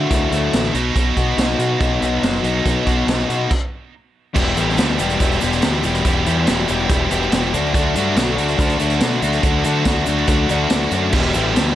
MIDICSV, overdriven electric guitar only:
0, 0, Header, 1, 2, 480
1, 0, Start_track
1, 0, Key_signature, 1, "minor"
1, 0, Tempo, 424028
1, 1082, Time_signature, 4, 2, 24, 8
1, 13301, End_track
2, 0, Start_track
2, 0, Title_t, "Overdriven electric guitar"
2, 0, Program_c, 0, 29
2, 0, Note_on_c, 0, 50, 79
2, 0, Note_on_c, 0, 66, 72
2, 113, Note_on_c, 0, 64, 64
2, 357, Note_off_c, 0, 50, 0
2, 358, Note_on_c, 0, 57, 65
2, 603, Note_on_c, 0, 50, 64
2, 838, Note_off_c, 0, 64, 0
2, 841, Note_off_c, 0, 57, 0
2, 842, Note_on_c, 0, 47, 65
2, 843, Note_off_c, 0, 50, 0
2, 1080, Note_off_c, 0, 47, 0
2, 1084, Note_on_c, 0, 47, 74
2, 1322, Note_off_c, 0, 66, 0
2, 1327, Note_on_c, 0, 66, 69
2, 1554, Note_on_c, 0, 63, 66
2, 1784, Note_off_c, 0, 66, 0
2, 1798, Note_on_c, 0, 66, 72
2, 2016, Note_off_c, 0, 63, 0
2, 2029, Note_on_c, 0, 63, 72
2, 2270, Note_on_c, 0, 59, 70
2, 2285, Note_off_c, 0, 47, 0
2, 2522, Note_on_c, 0, 54, 62
2, 2749, Note_off_c, 0, 63, 0
2, 2763, Note_on_c, 0, 63, 67
2, 3001, Note_off_c, 0, 66, 0
2, 3003, Note_on_c, 0, 47, 78
2, 3239, Note_on_c, 0, 66, 66
2, 3472, Note_off_c, 0, 63, 0
2, 3477, Note_off_c, 0, 59, 0
2, 3486, Note_on_c, 0, 63, 62
2, 3707, Note_off_c, 0, 66, 0
2, 3720, Note_on_c, 0, 66, 73
2, 3724, Note_off_c, 0, 54, 0
2, 3962, Note_off_c, 0, 66, 0
2, 3964, Note_off_c, 0, 47, 0
2, 3965, Note_off_c, 0, 63, 0
2, 4908, Note_on_c, 0, 40, 89
2, 4916, Note_on_c, 0, 47, 107
2, 4928, Note_on_c, 0, 52, 105
2, 4930, Note_on_c, 0, 55, 99
2, 4936, Note_on_c, 0, 59, 103
2, 4941, Note_on_c, 0, 67, 96
2, 5149, Note_off_c, 0, 40, 0
2, 5153, Note_off_c, 0, 47, 0
2, 5154, Note_on_c, 0, 40, 83
2, 5162, Note_off_c, 0, 52, 0
2, 5166, Note_on_c, 0, 47, 73
2, 5167, Note_on_c, 0, 52, 76
2, 5173, Note_off_c, 0, 55, 0
2, 5177, Note_off_c, 0, 59, 0
2, 5177, Note_on_c, 0, 55, 71
2, 5181, Note_on_c, 0, 59, 79
2, 5187, Note_off_c, 0, 67, 0
2, 5192, Note_on_c, 0, 67, 80
2, 5391, Note_off_c, 0, 40, 0
2, 5391, Note_off_c, 0, 47, 0
2, 5396, Note_on_c, 0, 40, 95
2, 5405, Note_off_c, 0, 52, 0
2, 5405, Note_on_c, 0, 47, 96
2, 5409, Note_off_c, 0, 55, 0
2, 5409, Note_on_c, 0, 52, 84
2, 5414, Note_off_c, 0, 59, 0
2, 5414, Note_on_c, 0, 55, 110
2, 5419, Note_on_c, 0, 59, 100
2, 5420, Note_off_c, 0, 67, 0
2, 5424, Note_on_c, 0, 67, 85
2, 5621, Note_off_c, 0, 40, 0
2, 5633, Note_off_c, 0, 47, 0
2, 5635, Note_on_c, 0, 40, 86
2, 5637, Note_off_c, 0, 52, 0
2, 5647, Note_on_c, 0, 47, 77
2, 5648, Note_off_c, 0, 55, 0
2, 5650, Note_off_c, 0, 59, 0
2, 5650, Note_on_c, 0, 52, 79
2, 5653, Note_off_c, 0, 67, 0
2, 5662, Note_on_c, 0, 55, 84
2, 5664, Note_on_c, 0, 59, 86
2, 5666, Note_on_c, 0, 67, 98
2, 5867, Note_off_c, 0, 40, 0
2, 5874, Note_off_c, 0, 47, 0
2, 5880, Note_on_c, 0, 40, 85
2, 5884, Note_off_c, 0, 52, 0
2, 5887, Note_on_c, 0, 47, 90
2, 5890, Note_off_c, 0, 55, 0
2, 5893, Note_off_c, 0, 59, 0
2, 5898, Note_on_c, 0, 52, 88
2, 5902, Note_off_c, 0, 67, 0
2, 5903, Note_on_c, 0, 55, 94
2, 5907, Note_on_c, 0, 59, 98
2, 5915, Note_on_c, 0, 67, 91
2, 6102, Note_off_c, 0, 40, 0
2, 6111, Note_off_c, 0, 47, 0
2, 6115, Note_on_c, 0, 40, 97
2, 6117, Note_off_c, 0, 52, 0
2, 6123, Note_off_c, 0, 55, 0
2, 6124, Note_on_c, 0, 47, 86
2, 6131, Note_on_c, 0, 52, 84
2, 6133, Note_off_c, 0, 59, 0
2, 6136, Note_off_c, 0, 67, 0
2, 6137, Note_on_c, 0, 55, 91
2, 6147, Note_on_c, 0, 59, 102
2, 6149, Note_on_c, 0, 67, 86
2, 6353, Note_off_c, 0, 40, 0
2, 6363, Note_off_c, 0, 47, 0
2, 6366, Note_on_c, 0, 40, 76
2, 6367, Note_off_c, 0, 52, 0
2, 6375, Note_off_c, 0, 55, 0
2, 6377, Note_on_c, 0, 47, 88
2, 6380, Note_off_c, 0, 67, 0
2, 6381, Note_off_c, 0, 59, 0
2, 6381, Note_on_c, 0, 52, 82
2, 6388, Note_on_c, 0, 55, 100
2, 6394, Note_on_c, 0, 59, 105
2, 6394, Note_on_c, 0, 67, 102
2, 6590, Note_off_c, 0, 40, 0
2, 6595, Note_off_c, 0, 47, 0
2, 6603, Note_off_c, 0, 52, 0
2, 6604, Note_on_c, 0, 40, 87
2, 6606, Note_off_c, 0, 55, 0
2, 6608, Note_on_c, 0, 47, 84
2, 6617, Note_off_c, 0, 67, 0
2, 6617, Note_on_c, 0, 52, 86
2, 6619, Note_off_c, 0, 59, 0
2, 6620, Note_on_c, 0, 55, 84
2, 6630, Note_on_c, 0, 67, 94
2, 6633, Note_on_c, 0, 59, 90
2, 6822, Note_off_c, 0, 40, 0
2, 6828, Note_off_c, 0, 47, 0
2, 6836, Note_off_c, 0, 52, 0
2, 6836, Note_on_c, 0, 40, 99
2, 6839, Note_off_c, 0, 55, 0
2, 6842, Note_on_c, 0, 47, 98
2, 6850, Note_off_c, 0, 59, 0
2, 6850, Note_on_c, 0, 52, 99
2, 6853, Note_off_c, 0, 67, 0
2, 6853, Note_on_c, 0, 55, 106
2, 6864, Note_on_c, 0, 59, 111
2, 6867, Note_on_c, 0, 67, 105
2, 7070, Note_off_c, 0, 40, 0
2, 7081, Note_off_c, 0, 47, 0
2, 7083, Note_off_c, 0, 52, 0
2, 7083, Note_on_c, 0, 40, 76
2, 7089, Note_off_c, 0, 55, 0
2, 7092, Note_off_c, 0, 59, 0
2, 7095, Note_on_c, 0, 47, 80
2, 7096, Note_on_c, 0, 52, 84
2, 7100, Note_off_c, 0, 67, 0
2, 7103, Note_on_c, 0, 55, 82
2, 7105, Note_on_c, 0, 59, 95
2, 7114, Note_on_c, 0, 67, 84
2, 7299, Note_off_c, 0, 40, 0
2, 7306, Note_off_c, 0, 47, 0
2, 7313, Note_off_c, 0, 52, 0
2, 7313, Note_on_c, 0, 40, 98
2, 7316, Note_off_c, 0, 55, 0
2, 7319, Note_on_c, 0, 47, 94
2, 7321, Note_off_c, 0, 59, 0
2, 7323, Note_off_c, 0, 67, 0
2, 7326, Note_on_c, 0, 52, 100
2, 7330, Note_on_c, 0, 55, 95
2, 7335, Note_on_c, 0, 59, 108
2, 7336, Note_on_c, 0, 67, 103
2, 7538, Note_off_c, 0, 40, 0
2, 7548, Note_off_c, 0, 47, 0
2, 7551, Note_on_c, 0, 40, 78
2, 7554, Note_off_c, 0, 52, 0
2, 7559, Note_off_c, 0, 55, 0
2, 7561, Note_on_c, 0, 47, 97
2, 7562, Note_off_c, 0, 59, 0
2, 7568, Note_off_c, 0, 67, 0
2, 7568, Note_on_c, 0, 52, 79
2, 7573, Note_on_c, 0, 55, 96
2, 7575, Note_on_c, 0, 59, 94
2, 7582, Note_on_c, 0, 67, 88
2, 7784, Note_off_c, 0, 40, 0
2, 7791, Note_off_c, 0, 47, 0
2, 7795, Note_off_c, 0, 52, 0
2, 7797, Note_on_c, 0, 40, 88
2, 7804, Note_on_c, 0, 47, 84
2, 7806, Note_off_c, 0, 55, 0
2, 7808, Note_off_c, 0, 59, 0
2, 7809, Note_on_c, 0, 52, 92
2, 7814, Note_off_c, 0, 67, 0
2, 7820, Note_on_c, 0, 55, 93
2, 7821, Note_on_c, 0, 59, 93
2, 7828, Note_on_c, 0, 67, 90
2, 8017, Note_off_c, 0, 40, 0
2, 8030, Note_off_c, 0, 47, 0
2, 8031, Note_on_c, 0, 40, 80
2, 8033, Note_off_c, 0, 52, 0
2, 8039, Note_off_c, 0, 55, 0
2, 8042, Note_off_c, 0, 59, 0
2, 8044, Note_on_c, 0, 47, 94
2, 8046, Note_on_c, 0, 52, 93
2, 8051, Note_off_c, 0, 67, 0
2, 8053, Note_on_c, 0, 55, 93
2, 8055, Note_on_c, 0, 59, 96
2, 8064, Note_on_c, 0, 67, 102
2, 8265, Note_off_c, 0, 40, 0
2, 8268, Note_off_c, 0, 47, 0
2, 8273, Note_off_c, 0, 52, 0
2, 8278, Note_on_c, 0, 40, 88
2, 8281, Note_off_c, 0, 55, 0
2, 8282, Note_on_c, 0, 47, 98
2, 8287, Note_on_c, 0, 52, 92
2, 8289, Note_off_c, 0, 59, 0
2, 8295, Note_on_c, 0, 55, 96
2, 8297, Note_off_c, 0, 67, 0
2, 8303, Note_on_c, 0, 59, 105
2, 8311, Note_on_c, 0, 67, 100
2, 8505, Note_off_c, 0, 40, 0
2, 8507, Note_off_c, 0, 47, 0
2, 8509, Note_off_c, 0, 52, 0
2, 8513, Note_off_c, 0, 55, 0
2, 8517, Note_off_c, 0, 59, 0
2, 8520, Note_on_c, 0, 50, 79
2, 8521, Note_off_c, 0, 67, 0
2, 8531, Note_on_c, 0, 57, 93
2, 8533, Note_on_c, 0, 62, 91
2, 8540, Note_on_c, 0, 66, 92
2, 8749, Note_off_c, 0, 50, 0
2, 8754, Note_on_c, 0, 50, 89
2, 8759, Note_off_c, 0, 57, 0
2, 8764, Note_on_c, 0, 57, 94
2, 8767, Note_off_c, 0, 62, 0
2, 8772, Note_on_c, 0, 62, 105
2, 8773, Note_off_c, 0, 66, 0
2, 8777, Note_on_c, 0, 66, 93
2, 8990, Note_off_c, 0, 50, 0
2, 8995, Note_on_c, 0, 50, 82
2, 9004, Note_off_c, 0, 57, 0
2, 9007, Note_off_c, 0, 62, 0
2, 9008, Note_on_c, 0, 57, 84
2, 9012, Note_on_c, 0, 62, 91
2, 9017, Note_off_c, 0, 66, 0
2, 9022, Note_on_c, 0, 66, 85
2, 9229, Note_off_c, 0, 50, 0
2, 9234, Note_on_c, 0, 50, 88
2, 9237, Note_off_c, 0, 57, 0
2, 9242, Note_on_c, 0, 57, 91
2, 9243, Note_off_c, 0, 62, 0
2, 9248, Note_on_c, 0, 62, 93
2, 9250, Note_off_c, 0, 66, 0
2, 9255, Note_on_c, 0, 66, 109
2, 9462, Note_off_c, 0, 50, 0
2, 9466, Note_off_c, 0, 57, 0
2, 9466, Note_on_c, 0, 50, 82
2, 9471, Note_on_c, 0, 57, 82
2, 9475, Note_off_c, 0, 62, 0
2, 9480, Note_on_c, 0, 62, 97
2, 9481, Note_off_c, 0, 66, 0
2, 9485, Note_on_c, 0, 66, 96
2, 9689, Note_off_c, 0, 50, 0
2, 9695, Note_off_c, 0, 57, 0
2, 9700, Note_off_c, 0, 62, 0
2, 9702, Note_on_c, 0, 50, 88
2, 9708, Note_on_c, 0, 57, 83
2, 9710, Note_off_c, 0, 66, 0
2, 9714, Note_on_c, 0, 62, 92
2, 9723, Note_on_c, 0, 66, 98
2, 9929, Note_off_c, 0, 50, 0
2, 9930, Note_off_c, 0, 57, 0
2, 9941, Note_off_c, 0, 62, 0
2, 9942, Note_on_c, 0, 50, 77
2, 9943, Note_on_c, 0, 57, 87
2, 9948, Note_off_c, 0, 66, 0
2, 9954, Note_on_c, 0, 62, 93
2, 9961, Note_on_c, 0, 66, 98
2, 10172, Note_off_c, 0, 50, 0
2, 10177, Note_off_c, 0, 57, 0
2, 10185, Note_off_c, 0, 62, 0
2, 10186, Note_on_c, 0, 50, 91
2, 10191, Note_on_c, 0, 57, 102
2, 10193, Note_off_c, 0, 66, 0
2, 10199, Note_on_c, 0, 62, 99
2, 10206, Note_on_c, 0, 66, 101
2, 10415, Note_off_c, 0, 50, 0
2, 10421, Note_off_c, 0, 57, 0
2, 10428, Note_off_c, 0, 62, 0
2, 10428, Note_on_c, 0, 50, 73
2, 10434, Note_on_c, 0, 57, 90
2, 10436, Note_off_c, 0, 66, 0
2, 10441, Note_on_c, 0, 62, 96
2, 10450, Note_on_c, 0, 66, 93
2, 10651, Note_off_c, 0, 50, 0
2, 10659, Note_off_c, 0, 57, 0
2, 10665, Note_on_c, 0, 50, 97
2, 10668, Note_off_c, 0, 62, 0
2, 10673, Note_on_c, 0, 57, 111
2, 10674, Note_off_c, 0, 66, 0
2, 10682, Note_on_c, 0, 62, 101
2, 10688, Note_on_c, 0, 66, 105
2, 10900, Note_off_c, 0, 50, 0
2, 10908, Note_off_c, 0, 57, 0
2, 10912, Note_off_c, 0, 62, 0
2, 10914, Note_on_c, 0, 50, 90
2, 10916, Note_off_c, 0, 66, 0
2, 10922, Note_on_c, 0, 57, 82
2, 10926, Note_on_c, 0, 62, 83
2, 10929, Note_on_c, 0, 66, 87
2, 11137, Note_off_c, 0, 50, 0
2, 11147, Note_off_c, 0, 57, 0
2, 11150, Note_on_c, 0, 50, 96
2, 11153, Note_off_c, 0, 62, 0
2, 11160, Note_off_c, 0, 66, 0
2, 11161, Note_on_c, 0, 57, 89
2, 11167, Note_on_c, 0, 62, 93
2, 11173, Note_on_c, 0, 66, 102
2, 11381, Note_off_c, 0, 50, 0
2, 11393, Note_off_c, 0, 57, 0
2, 11395, Note_on_c, 0, 50, 83
2, 11397, Note_off_c, 0, 62, 0
2, 11406, Note_off_c, 0, 66, 0
2, 11406, Note_on_c, 0, 57, 83
2, 11411, Note_on_c, 0, 62, 81
2, 11420, Note_on_c, 0, 66, 97
2, 11623, Note_off_c, 0, 50, 0
2, 11630, Note_off_c, 0, 57, 0
2, 11636, Note_on_c, 0, 50, 87
2, 11638, Note_off_c, 0, 62, 0
2, 11639, Note_off_c, 0, 66, 0
2, 11644, Note_on_c, 0, 57, 79
2, 11651, Note_on_c, 0, 62, 97
2, 11652, Note_on_c, 0, 66, 90
2, 11860, Note_off_c, 0, 50, 0
2, 11869, Note_off_c, 0, 57, 0
2, 11874, Note_on_c, 0, 50, 82
2, 11881, Note_off_c, 0, 62, 0
2, 11883, Note_on_c, 0, 57, 91
2, 11886, Note_off_c, 0, 66, 0
2, 11895, Note_on_c, 0, 62, 90
2, 11899, Note_on_c, 0, 66, 98
2, 12109, Note_off_c, 0, 50, 0
2, 12116, Note_off_c, 0, 57, 0
2, 12122, Note_on_c, 0, 50, 94
2, 12125, Note_off_c, 0, 62, 0
2, 12130, Note_off_c, 0, 66, 0
2, 12130, Note_on_c, 0, 57, 93
2, 12139, Note_on_c, 0, 62, 93
2, 12143, Note_on_c, 0, 66, 90
2, 12354, Note_off_c, 0, 50, 0
2, 12358, Note_off_c, 0, 57, 0
2, 12367, Note_off_c, 0, 62, 0
2, 12368, Note_on_c, 0, 50, 74
2, 12371, Note_on_c, 0, 57, 85
2, 12372, Note_off_c, 0, 66, 0
2, 12380, Note_on_c, 0, 62, 87
2, 12386, Note_on_c, 0, 66, 94
2, 12590, Note_off_c, 0, 50, 0
2, 12591, Note_off_c, 0, 57, 0
2, 12596, Note_off_c, 0, 62, 0
2, 12599, Note_off_c, 0, 66, 0
2, 12601, Note_on_c, 0, 40, 96
2, 12610, Note_on_c, 0, 47, 112
2, 12616, Note_on_c, 0, 52, 95
2, 12622, Note_on_c, 0, 55, 103
2, 12630, Note_on_c, 0, 59, 95
2, 12634, Note_on_c, 0, 67, 110
2, 12835, Note_off_c, 0, 47, 0
2, 12839, Note_off_c, 0, 40, 0
2, 12843, Note_on_c, 0, 40, 76
2, 12849, Note_on_c, 0, 47, 74
2, 12855, Note_off_c, 0, 52, 0
2, 12858, Note_off_c, 0, 55, 0
2, 12859, Note_on_c, 0, 52, 74
2, 12862, Note_on_c, 0, 55, 78
2, 12865, Note_off_c, 0, 59, 0
2, 12865, Note_off_c, 0, 67, 0
2, 12869, Note_on_c, 0, 59, 92
2, 12870, Note_on_c, 0, 67, 84
2, 13061, Note_off_c, 0, 40, 0
2, 13062, Note_off_c, 0, 47, 0
2, 13065, Note_on_c, 0, 40, 94
2, 13075, Note_on_c, 0, 47, 99
2, 13080, Note_off_c, 0, 52, 0
2, 13084, Note_on_c, 0, 52, 93
2, 13085, Note_off_c, 0, 55, 0
2, 13089, Note_off_c, 0, 59, 0
2, 13090, Note_on_c, 0, 55, 102
2, 13094, Note_on_c, 0, 59, 98
2, 13095, Note_off_c, 0, 67, 0
2, 13100, Note_on_c, 0, 67, 103
2, 13301, Note_off_c, 0, 40, 0
2, 13301, Note_off_c, 0, 47, 0
2, 13301, Note_off_c, 0, 52, 0
2, 13301, Note_off_c, 0, 55, 0
2, 13301, Note_off_c, 0, 59, 0
2, 13301, Note_off_c, 0, 67, 0
2, 13301, End_track
0, 0, End_of_file